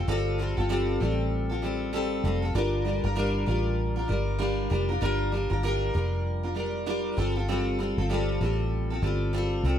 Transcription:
0.08 fingered electric bass G1, steel-string acoustic guitar G3 C4 F4 A4
0.38 steel-string acoustic guitar G3 C4 F4 A4
0.57 fingered electric bass G1, steel-string acoustic guitar C4 F4 A4
0.69 steel-string acoustic guitar G3 C4 F4 A4
1.00 fingered electric bass A1, steel-string acoustic guitar G3 C4 F4 A4
1.49 steel-string acoustic guitar C4 F4 A4
1.62 steel-string acoustic guitar G3 C4 F4 A4
1.93 steel-string acoustic guitar G3 C4 F4 A4
2.24 fingered electric bass F1, steel-string acoustic guitar G3 C4 F4 A4
2.42 steel-string acoustic guitar C4 F4 A4
2.55 fingered electric bass G1, steel-string acoustic guitar G3 D4 F4 A#4
2.85 steel-string acoustic guitar G3 D4 F4 A#4
3.04 fingered electric bass G1, steel-string acoustic guitar D4 F4 A#4
3.15 steel-string acoustic guitar G3 D4 F4 A#4
3.46 fingered electric bass A1, steel-string acoustic guitar G3 D4 F4 A#4
3.96 steel-string acoustic guitar D4 F4 A#4
4.08 fingered electric bass G1, steel-string acoustic guitar G3 D4 F4 A#4
4.39 steel-string acoustic guitar G3 D4 F4 A#4
4.70 fingered electric bass F1, steel-string acoustic guitar G3 D4 F4 A#4
4.89 steel-string acoustic guitar D4 F4 A#4
5.01 fingered electric bass G1, steel-string acoustic guitar G3 D4 F4 A#4
5.32 steel-string acoustic guitar G3 D4 F4 A#4
5.50 fingered electric bass G1, steel-string acoustic guitar D4 F4 A#4
5.63 steel-string acoustic guitar G3 D4 F4 A#4
5.94 fingered electric bass F1, steel-string acoustic guitar G3 D4 F4 A#4
6.43 steel-string acoustic guitar D4 F4 A#4
6.55 steel-string acoustic guitar G3 D4 F4 A#4
6.86 steel-string acoustic guitar G3 D4 F4 A#4
7.17 fingered electric bass G1, steel-string acoustic guitar G3 C4 F4 A4
7.36 steel-string acoustic guitar C4 F4 A4
7.48 steel-string acoustic guitar G3 C4 F4 A4
7.79 steel-string acoustic guitar G3 C4 F4 A4
7.98 fingered electric bass G1, steel-string acoustic guitar C4 F4 A4
8.10 steel-string acoustic guitar G3 C4 F4 A4
8.41 fingered electric bass A1, steel-string acoustic guitar G3 C4 F4 A4
8.90 steel-string acoustic guitar C4 F4 A4
9.02 fingered electric bass G1, steel-string acoustic guitar G3 C4 F4 A4
9.33 steel-string acoustic guitar G3 C4 F4 A4
9.63 fingered electric bass C2, steel-string acoustic guitar G3 C4 F4 A4

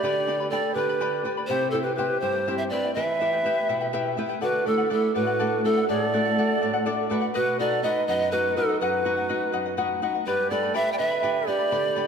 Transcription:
Already playing: nylon-string guitar B3 D4 G4, quena G4, pan flute D5
0.03 nylon-string guitar D3, charango G4 B4 D5 G5 B5
0.27 nylon-string guitar B3 D4 G4, charango B4 D5 G5 B5
0.40 charango B4 D5 B5
0.50 nylon-string guitar B3 D4 G4, charango G4 B4 D5 G5 B5, quena A4, pan flute D5
0.74 nylon-string guitar D3, quena G4, pan flute B4, charango B4 D5 G5 B5
0.89 charango B4 D5 B5
1.00 nylon-string guitar B3 D4 G4, charango G4 B4 D5 G5 B5
1.25 nylon-string guitar B3 D4 G4, charango B4 D5 G5 B5
1.37 charango B4 D5 B5
1.47 nylon-string guitar C3, charango E4 G4 C5 E5 G5, quena G4, pan flute C5
1.71 nylon-string guitar C4 E4 G4, quena E4, charango E4 C5 E5, pan flute A4
1.75 charango G5
1.82 quena G4, pan flute B4, charango G5
1.86 charango E4 C5
1.95 nylon-string guitar C4, charango E4 G4 C5 E5 G5, quena G4, pan flute B4
1.99 nylon-string guitar E4 G4
2.20 nylon-string guitar G2, charango E4 C5 E5 G5, quena G4, pan flute C5
2.35 charango E4 C5 G5
2.48 nylon-string guitar C4 E4 G4, charango E4 G4 C5 E5 G5
2.58 quena C5, pan flute E5
2.70 nylon-string guitar C4 E4 G4, charango E4 C5 E5 G5, quena B4, pan flute D5
2.84 charango E4 C5 G5
2.94 nylon-string guitar E3, charango E4 G4 B4 E5 G5, quena B4, pan flute E5
3.20 nylon-string guitar B3 E4 G4, charango E4 B4 E5 G5
3.33 charango E4 B4 G5
3.45 nylon-string guitar B3 E4 G4, charango E4 G4 B4 E5 G5
3.69 nylon-string guitar B2, charango E4 B4 E5 G5
3.81 charango E4 B4 G5
3.93 nylon-string guitar B3 E4 G4 E5, charango E4 G4 B4 E5 G5
4.17 nylon-string guitar B3 E4 G4 B4, charango E4 B4 E5 G5
4.29 charango E4 B4 G5
4.41 nylon-string guitar D3, quena F#4, charango A4 D5 F#5, pan flute B4
4.65 nylon-string guitar A3 D4 F#4, quena F#4, charango A4 D5 F#5, pan flute A4
4.70 quena E4
4.77 charango D5 F#5
4.89 nylon-string guitar A3 D4 F#4, quena E4, charango A4 D5 F#5, pan flute A4
5.14 nylon-string guitar A2, quena G4, charango A4 D5 F#5, pan flute B4
5.19 quena F#4
5.27 charango D5 F#5
5.39 nylon-string guitar A3 D4 F#4, charango A4 D5 F#5
5.64 nylon-string guitar A3 D4 F#4, quena E4, charango A4 D5 F#5, pan flute A4
5.77 charango D5 F#5
5.88 nylon-string guitar A2, quena G#4, charango A4 D5 F#5, pan flute D5
6.06 quena A4
6.13 nylon-string guitar A3 D4 F#4, charango A4 D5 F#5
6.25 charango D5 F#5
6.38 nylon-string guitar A3 D4 F#4, charango A4 D5 F#5
6.61 nylon-string guitar A2, charango A4 D5 F#5
6.73 charango D5 F#5
6.86 nylon-string guitar A3 D4 F#4 D5, charango A4 D5 F#5
7.09 nylon-string guitar A3 D4 F#4 B4, charango A4 D5 F#5
7.21 charango D5 F#5
7.34 nylon-string guitar B2, quena F#4, charango B4 D#5 F#5, pan flute B4
7.59 nylon-string guitar B3 D#4 F#4, quena A4, charango B4 D#5 F#5, pan flute D5
7.71 charango D#5 F#5
7.83 nylon-string guitar B3 D#4 F#4, charango B4 D#5 F#5, quena B4, pan flute D#5
8.07 nylon-string guitar F#2, charango B4 D#5 F#5, quena B4, pan flute D#5
8.20 charango D#5 F#5
8.31 nylon-string guitar B3 D#4 F#4, quena F#4, pan flute B4, charango B4 D#5 F#5
8.56 nylon-string guitar B3 D#4 F#4, quena D#4, pan flute A4, charango B4 D#5 F#5
8.69 charango D#5 F#5
8.80 nylon-string guitar F#2, quena F#4, pan flute B4, charango B4 D#5 F#5
9.05 nylon-string guitar B3 D#4 F#4, charango B4 D#5 F#5
9.17 charango D#5 F#5
9.29 nylon-string guitar B3 D#4 F#4, charango B4 D#5 F#5
9.52 nylon-string guitar F#2, charango B4 D#5 F#5
9.66 charango D#5 F#5
9.77 nylon-string guitar B3 D#4 F#4, charango B4 D#5 F#5
10.02 nylon-string guitar B3 D#4 F#4, charango B4 D#5 F#5
10.14 charango D#5 F#5
10.26 nylon-string guitar G2, quena G4, charango G4 B4 D5 G5 B5, pan flute B4
10.50 nylon-string guitar B3 D4 G4, quena A4, charango B4 D5 G5 B5, pan flute D5
10.63 charango B4 D5 B5
10.74 nylon-string guitar B3 D4 G4, charango G4 B4 D5 G5 B5, quena B4, pan flute E5
10.92 quena D5, pan flute G5
10.98 nylon-string guitar D3, quena B4, charango B4 D5 G5 B5, pan flute E5
11.11 charango B4 D5 B5
11.23 nylon-string guitar B3 D4 G4, charango G4 B4 D5 G5 B5
11.47 nylon-string guitar B3 D4 G4, quena G4, charango B4 D5 G5 B5, pan flute D5
11.59 charango B4 D5 B5
11.71 nylon-string guitar D3, charango G4 B4 D5 G5 B5
11.95 nylon-string guitar B3 D4 G4, charango B4 D5 G5 B5

